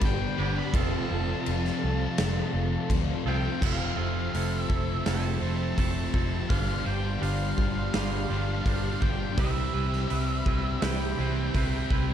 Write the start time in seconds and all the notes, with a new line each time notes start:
Already playing: G2 D3 G3 B3 D4 G4 B4 D5 B5
0.01 G1 G2 D3 G3, kick, crash
0.05 G5
0.37 G1 G2 D3 G3 B3 D4 B4
0.58 B5
0.74 F1 F2 C3 F3 A3 C4 F4 A4 F5 A5, kick, crash
1.11 F1
1.46 F1 F2 C3 F3, crash
1.65 snare
1.81 C2 C3 F3
2.18 F1, snare, crash
2.53 F1
2.90 D2 F2 C3 F3, kick, crash
3.25 C2 F2 C3 F3 A3 C4 F4 A4 G5
3.60 F1 F2 C3 F3 A3 C4 E4 A4 C5 A5, kick, crash
3.66 F5
3.97 F1 F3 C4 E4 A4
4.01 C3
4.33 F1 F2 C3 F3 A3 C4 E4 A4, open hi-hat
4.61 E5
4.69 F1 F3 C4 E4 A4, kick
4.73 C3
5.04 F1 F2 C3 F3 A3 C4 E4 A4 A5, snare, open hi-hat
5.40 F1 F2 F3 A3 C4 E4 A4
5.45 C3
5.77 F1 F2 C3 F3 A3 C4 E4 A4 A5, kick, open hi-hat
6.14 F1 C3 F3 C4 E4 A4, kick
6.49 G1 G2 D3 G3 B3 D4 F4 G4 C5 D5 F5 C6, kick, open hi-hat
6.85 G1 D3 G3 D4 F4 C5 G5
7.21 G1 G2 D3 G3 D4 F4 C5 F5, open hi-hat
7.25 G3
7.57 G1 D3 G3 D4 F4 C5, kick
7.93 G1 G2 D3 G3 D4 F4 C5 F5, snare, open hi-hat
8.29 G1 G2 D3 G3 B3 D4 F4 C5
8.65 G1 G2 D3 G3 B3 D4 F4 C5, kick, open hi-hat
9.01 G1 D3 G3 D4 F4 C5 G5, kick
9.37 C2 C3 E3 G3 C4 E4 B4 E5 B5, kick, open hi-hat
9.42 C4
9.74 C2 G3 C4 E4 B4
9.93 snare
10.09 C2 C3 G3 C4 E4 B4, open hi-hat
10.46 C2 G3 C4 E4 B4, kick
10.80 C2 C3 E3 G3 C4 E4 B4 G5, snare, open hi-hat
11.17 C2 C3 G3 C4 E4 B4
11.22 G3
11.53 C2 C3 G3 C4 E4 B4, kick, open hi-hat
11.90 C2 G3 C4 E4 B4, kick